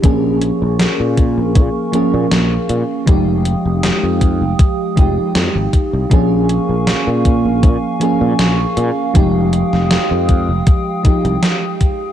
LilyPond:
<<
  \new Staff \with { instrumentName = "Ambient pad" } { \time 4/4 \key bes \dorian \tempo 4 = 79 << { <bes' aes'' des'''>1 | <aes g'' ees'''>1 | <bes' aes'' des'''>1 | <aes g'' ees'''>1 | } \\ { f''1~ | f''1 | f''1~ | f''1 | } >> }
  \new Staff \with { instrumentName = "FM electric piano" } { \time 4/4 \key bes \dorian <f bes des' aes'>2~ <f bes des' aes'>8 <f bes des' aes'>4. | <f aes ees' g'>2~ <f aes ees' g'>8 <f aes ees' g'>4. | <f bes des' aes'>2~ <f bes des' aes'>8 <f bes des' aes'>4. | <f aes ees' g'>2~ <f aes ees' g'>8 <f aes ees' g'>4. | }
  \new Staff \with { instrumentName = "Fretless electric bass" } { \clef bass \time 4/4 \key bes \dorian bes,,8 r16 bes,,16 r16 bes,8 bes,,16 bes,16 r8 bes,16 bes,,16 r16 bes,16 r16 | f,,8 r16 f,,16 r16 f,8 f,,16 r8 f,,16 r16 f,16 aes,,16 r16 c,16 | bes,,8 r16 bes,,16 r16 bes,8 bes,,16 bes,16 r8 bes,16 bes,,16 r16 bes,16 r16 | f,,8 r16 f,,16 r16 f,8 f,,16 r8. c,16 r4 | }
  \new DrumStaff \with { instrumentName = "Drums" } \drummode { \time 4/4 <hh bd>8 hh8 <hh sn>8 <hh bd>8 <hh bd>8 hh8 <hh sn>8 hh8 | <hh bd>8 hh8 <hh sn>8 <hh bd>8 <hh bd>8 <hh bd>8 <hh sn>8 <hh bd>8 | <hh bd>8 hh8 <hh sn>8 <hh bd>8 <hh bd>8 hh8 <hh sn>8 hh8 | <hh bd>8 hh16 sn16 <hh sn>8 <hh bd>8 <hh bd>8 <hh bd>16 hh16 <hh sn>8 <hh bd>8 | }
>>